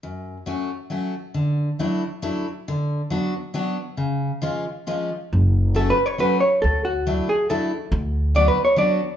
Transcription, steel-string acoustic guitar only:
X:1
M:3/4
L:1/8
Q:1/4=138
K:F#m
V:1 name="Steel-string acoustic guitar"
F,,2 [F,A,CF] z [F,A,CF] z | D,2 [F,A,DE] z [F,A,DE] z | D,2 [F,B,DF] z [F,B,DF] z | C,2 [^E,G,C^E] z [E,G,CE] z |
z2 [F,A,CF] z [F,A,CF] z | z2 [F,A,DE] z [F,A,DE] z | z2 [F,B,DF] z [F,B,DF] z |]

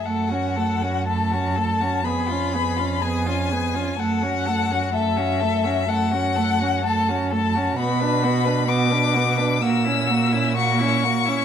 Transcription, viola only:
X:1
M:4/4
L:1/16
Q:1/4=63
K:F#m
V:1 name="Viola"
A, C A, C A, C A, C B, C B, C B, C B, C | A, C A, C A, C A, C A, C A, C A, C A, C | B, D B, D B, D B, D ^A, C A, C A, C A, C |]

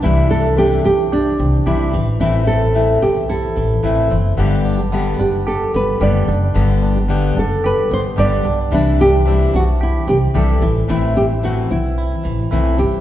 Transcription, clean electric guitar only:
X:1
M:4/4
L:1/8
Q:"Swing 16ths" 1/4=111
K:G
V:1 name="Clean electric guitar"
E, D C D G C G E, | E, C E, C E E, E C | B, D B, D G B, G D | B, D B, D G B, G D |
E, D C D G C G E, | E, C E, C E E, E C |]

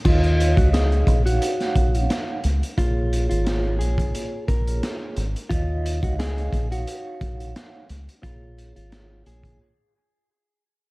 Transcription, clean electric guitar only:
X:1
M:4/4
L:1/16
Q:"Swing 16ths" 1/4=88
K:Ebm
V:1 name="Clean electric guitar"
F3 G A3 G4- G z4 | F3 F3 A4 B3 z3 | F3 G A3 G4- G z4 | F3 F3 A2 z8 |]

